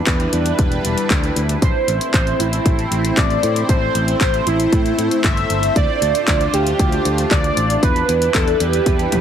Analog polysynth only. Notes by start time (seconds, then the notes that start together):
1.62 C5
2.14 C5
2.39 E4
3.17 D5
3.69 C5
4.21 C5
4.46 E4
5.24 E5
5.76 D5
6.27 D5
6.53 G4
7.31 D5
7.83 B4
8.34 A4
8.60 G4